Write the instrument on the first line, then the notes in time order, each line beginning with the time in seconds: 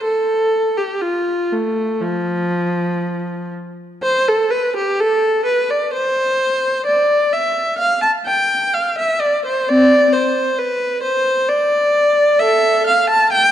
viola
0.03 A4
0.78 G4
1.01 F4
1.52 A3
2.01 F3
4.03 C5
4.28 A4
4.51 B4
4.76 G4
5.00 A4
5.46 B4
5.71 D5
5.93 C5
6.86 D5
7.33 E5
7.79 F5
8.02 A5
8.26 G5
8.74 F5
8.98 E5
9.20 D5
9.46 C5
9.69 C4 D5
10.13 C5
10.58 B4
11.03 C5
11.49 D5
12.40 A4 E5
12.87 F5
13.10 A5
13.33 G5